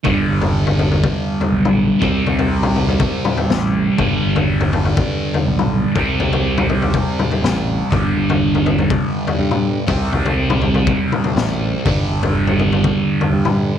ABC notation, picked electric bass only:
X:1
M:4/4
L:1/8
Q:1/4=122
K:C
V:1 name="Picked electric bass" clef=bass
G,,, G,,,4 z B,,,2 | C,, C,,4 z A,,,2 | G,,, G,,,4 z B,,,2 | C,, C,,4 z A,,,2 |
G,,, G,,,4 z G,,2 | C,, C,,4 z A,,,2 | G,,, G,,,4 z G,,2 |]